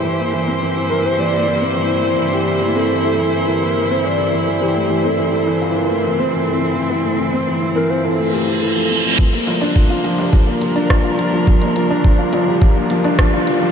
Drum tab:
HH |----------------|----------------|----------------|----------------|
SD |----------------|----------------|----------------|----------------|
T2 |----------------|----------------|----------------|----------------|
BD |----------------|----------------|----------------|----------------|

HH |-xx-x-x-x-xxx-x-|-xx-x-x-x-xxx-x-|
SD |------------r---|------------r---|
T2 |--o----o----o---|-o----o----o----|
BD |o---o---o---o---|o---o---o---o---|